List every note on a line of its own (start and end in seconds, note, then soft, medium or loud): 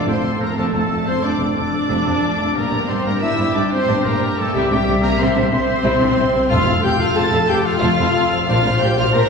0.00 2.53 A4 medium
0.00 0.59 F5 medium
0.06 0.13 F1 medium
0.06 0.14 F2 medium
0.06 0.40 C4 medium
0.06 0.41 C4 medium
0.06 0.15 E4 medium
0.06 0.40 C5 medium
0.06 0.43 C5 medium
0.06 0.41 C6 medium
0.23 0.30 F1 medium
0.23 0.31 F2 medium
0.23 0.31 F4 medium
0.40 0.47 F1 medium
0.40 0.47 F2 medium
0.40 0.57 A#3 medium
0.40 0.49 A#3 medium
0.40 0.47 C4 medium
0.40 0.57 A#4 medium
0.40 0.56 A#4 medium
0.40 0.58 A#5 loud
0.56 0.63 F1 medium
0.56 0.64 F2 medium
0.56 0.72 A3 medium
0.56 0.73 A3 medium
0.56 0.73 D4 medium
0.56 0.73 A4 medium
0.56 0.65 A4 medium
0.56 4.56 D5 medium
0.56 0.65 A5 loud
0.72 0.79 F1 medium
0.72 0.80 F2 medium
0.72 1.06 A3 medium
0.72 0.80 C4 medium
0.72 1.08 A4 medium
0.72 1.06 A4 medium
0.72 1.07 A5 loud
0.89 0.96 F1 medium
0.89 0.97 F2 medium
0.89 0.98 D4 medium
1.06 1.13 F1 medium
1.06 1.13 F2 medium
1.06 1.13 A3 medium
1.06 1.23 C4 medium
1.06 1.23 C4 loud
1.06 1.23 C5 loud
1.06 1.24 C5 medium
1.06 1.24 C6 loud
1.22 1.30 F1 medium
1.22 1.30 F2 medium
1.22 1.38 D4 medium
1.22 1.55 D4 medium
1.22 1.56 D5 medium
1.22 1.54 D6 loud
1.39 1.46 F1 medium
1.39 1.47 F2 medium
1.39 1.46 C4 medium
1.56 1.63 F1 medium
1.56 1.63 F2 medium
1.56 2.55 D4 loud
1.56 1.63 D4 medium
1.56 2.54 D5 medium
1.56 2.57 D5 medium
1.56 2.54 D6 loud
1.89 1.96 F1 medium
1.89 1.96 F2 medium
1.89 2.05 D4 medium
2.05 2.12 F1 medium
2.05 2.12 F2 medium
2.05 2.13 C4 medium
2.22 2.29 F1 medium
2.22 2.29 F2 medium
2.22 2.30 D4 medium
2.38 2.46 F1 medium
2.38 2.46 F2 medium
2.38 2.45 A3 medium
2.54 2.62 G1 medium
2.54 2.62 G2 medium
2.54 2.89 A#3 loud
2.54 2.90 A#3 loud
2.54 2.70 D4 loud
2.54 6.45 G4 loud
2.54 6.34 G4 medium
2.54 2.90 A#4 medium
2.54 2.91 A#4 medium
2.54 2.89 A#5 loud
2.71 2.79 G1 medium
2.71 2.79 G2 medium
2.71 2.78 C4 medium
2.87 2.95 G1 medium
2.87 2.96 G2 medium
2.87 3.06 C4 loud
2.87 3.07 C4 loud
2.87 2.94 D4 medium
2.87 3.05 C5 medium
2.87 3.05 C5 loud
2.87 3.05 C6 loud
3.04 3.11 G1 medium
3.04 3.12 G2 medium
3.04 3.11 A#3 medium
3.04 3.23 A#3 loud
3.04 3.15 A#3 medium
3.04 3.22 A#4 medium
3.04 3.23 A#4 medium
3.04 3.22 A#5 loud
3.21 3.28 G1 medium
3.21 3.28 G2 medium
3.21 3.37 D4 medium
3.21 3.55 E4 loud
3.21 3.55 E5 medium
3.21 3.58 E5 loud
3.21 3.55 E6 loud
3.37 3.44 G1 medium
3.37 3.45 G2 medium
3.37 3.44 C4 medium
3.53 3.61 G1 medium
3.53 3.62 G2 medium
3.53 3.61 D4 medium
3.53 3.72 D4 loud
3.53 3.73 D4 loud
3.53 3.63 D5 medium
3.53 3.72 D5 medium
3.53 3.72 D6 medium
3.71 4.06 C4 loud
3.71 4.05 C5 loud
3.71 4.07 C5 loud
3.71 4.05 C6 loud
3.88 3.95 G1 loud
3.88 3.95 G2 loud
3.88 4.04 D4 medium
4.04 4.11 G1 medium
4.04 4.12 G2 medium
4.04 4.38 A#3 loud
4.04 4.11 C4 medium
4.04 4.40 A#4 loud
4.04 4.38 A#4 loud
4.04 4.37 A#5 loud
4.21 4.27 G1 medium
4.21 4.28 G2 medium
4.21 4.28 D4 medium
4.37 4.44 G1 medium
4.37 4.45 G2 medium
4.37 4.55 A3 medium
4.37 4.44 A#3 medium
4.37 4.53 A4 loud
4.37 4.56 A4 loud
4.37 4.54 A5 loud
4.53 4.60 C2 loud
4.53 4.61 C3 loud
4.53 4.71 G3 loud
4.53 4.70 G3 loud
4.53 4.70 E4 loud
4.53 4.69 G4 loud
4.53 4.71 G4 loud
4.53 6.24 E5 medium
4.53 4.67 G5 loud
4.69 4.77 C2 medium
4.69 4.78 C3 medium
4.69 5.03 G3 medium
4.69 5.03 G3 loud
4.69 4.78 D4 medium
4.69 5.03 G4 loud
4.69 5.02 G5 loud
4.85 4.93 C2 medium
4.85 4.94 C3 medium
4.85 4.92 E4 medium
5.02 5.09 C2 medium
5.02 5.10 C3 medium
5.02 5.20 A#3 loud
5.02 5.10 C4 medium
5.02 5.18 A#4 loud
5.02 5.11 A#4 loud
5.02 5.19 A#5 loud
5.19 5.26 C2 loud
5.19 5.27 C3 loud
5.19 5.52 C4 medium
5.19 5.52 C4 loud
5.19 5.35 E4 loud
5.19 5.51 C5 medium
5.19 5.52 C5 medium
5.19 5.50 C6 loud
5.35 5.42 C2 medium
5.35 5.43 C3 medium
5.35 5.41 D4 medium
5.51 5.59 C2 medium
5.51 5.60 C3 medium
5.51 6.49 C4 loud
5.51 5.59 E4 medium
5.51 6.22 C5 loud
5.51 6.48 C6 loud
5.84 5.91 C2 loud
5.84 5.92 C3 loud
5.84 6.00 E4 loud
6.00 6.07 C2 medium
6.00 6.08 C3 medium
6.00 6.09 D4 medium
6.17 6.24 C2 medium
6.17 6.24 C3 medium
6.17 6.24 E4 medium
6.33 6.40 C2 medium
6.33 6.41 C3 medium
6.33 6.41 C4 medium
6.49 6.57 F1 loud
6.49 6.57 F2 loud
6.49 6.97 F2 loud
6.49 6.65 F4 loud
6.49 6.83 F4 loud
6.49 6.84 F4 loud
6.49 8.43 A4 loud
6.49 6.59 A4 loud
6.49 6.81 F5 loud
6.49 6.56 F5 medium
6.49 6.81 F5 loud
6.49 6.82 F6 loud
6.65 6.73 F1 medium
6.65 6.74 F2 medium
6.65 6.72 E4 medium
6.65 6.74 A4 medium
6.65 6.73 F5 medium
6.82 6.89 F1 medium
6.82 6.90 F2 medium
6.82 6.90 F4 medium
6.82 7.00 G4 loud
6.82 6.99 G4 loud
6.82 6.91 A4 medium
6.82 6.91 F5 medium
6.82 6.91 G5 loud
6.82 6.99 G5 loud
6.82 7.00 G6 loud
6.98 7.05 F1 medium
6.98 7.07 F2 medium
6.98 7.06 C4 medium
6.98 7.16 F4 loud
6.98 7.08 A4 medium
6.98 7.07 F5 loud
6.98 7.18 F5 loud
6.98 7.07 F5 medium
6.98 7.17 F6 loud
7.15 7.22 F1 loud
7.15 7.23 F2 loud
7.15 7.31 F4 loud
7.15 7.49 A4 loud
7.15 7.50 A4 loud
7.15 7.24 A4 medium
7.15 7.24 F5 medium
7.15 7.51 A5 loud
7.15 7.49 A6 loud
7.31 7.38 F1 medium
7.31 7.40 F2 medium
7.31 7.38 E4 medium
7.31 7.41 A4 medium
7.31 7.39 F5 medium
7.46 7.55 F1 medium
7.46 7.56 F2 medium
7.46 7.53 F4 medium
7.46 7.65 G4 loud
7.46 7.66 G4 loud
7.46 7.57 A4 loud
7.46 7.55 F5 medium
7.46 7.67 G5 loud
7.46 7.66 G5 loud
7.46 7.55 G6 loud
7.65 8.46 F4 loud
7.65 8.31 F4 loud
7.65 7.74 A4 medium
7.65 8.48 F5 loud
7.65 7.72 F5 medium
7.65 8.47 F5 loud
7.65 8.46 F6 loud
7.79 7.88 F1 loud
7.79 7.89 F2 loud
7.79 7.96 F4 loud
7.79 7.90 A4 medium
7.79 7.87 F5 medium
7.97 8.05 F1 medium
7.97 8.06 F2 medium
7.97 8.04 E4 medium
7.97 8.06 A4 medium
7.97 8.05 F5 medium
8.13 8.21 F1 medium
8.13 8.22 F2 medium
8.13 8.20 F4 medium
8.13 8.23 A4 medium
8.13 8.22 F5 medium
8.30 8.38 F1 medium
8.30 8.39 F2 medium
8.30 8.37 C4 medium
8.30 8.39 A4 medium
8.30 8.38 F5 medium
8.47 8.54 A#1 loud
8.47 8.56 A#2 medium
8.47 8.63 D4 loud
8.47 8.80 F4 loud
8.47 9.29 C5 loud
8.47 8.56 C5 medium
8.47 8.54 D5 medium
8.47 8.80 F5 loud
8.47 8.79 F5 loud
8.47 8.80 F6 loud
8.62 8.71 A#1 medium
8.62 8.72 A#2 medium
8.62 8.69 C4 medium
8.62 8.73 C5 medium
8.62 8.71 D5 medium
8.78 8.87 A#1 medium
8.78 8.88 A#2 medium
8.78 8.85 D4 medium
8.78 8.97 G4 loud
8.78 8.98 G4 loud
8.78 8.89 C5 medium
8.78 8.87 D5 medium
8.78 8.98 G5 loud
8.78 8.97 G5 loud
8.78 8.98 G6 loud
8.94 9.03 A#1 medium
8.94 9.04 A#2 medium
8.94 9.01 C4 medium
8.94 9.14 F4 loud
8.94 9.04 F4 loud
8.94 9.15 F5 loud
8.94 9.13 F5 loud
8.98 9.06 C5 medium
8.98 9.04 D5 medium
8.98 9.14 F6 loud
9.11 9.19 A#1 loud
9.11 9.21 A#2 loud
9.11 9.28 D4 loud
9.11 9.29 A#4 loud
9.11 9.21 D5 medium
9.11 9.29 A#5 loud
9.11 9.29 A#6 loud
9.16 9.23 C5 medium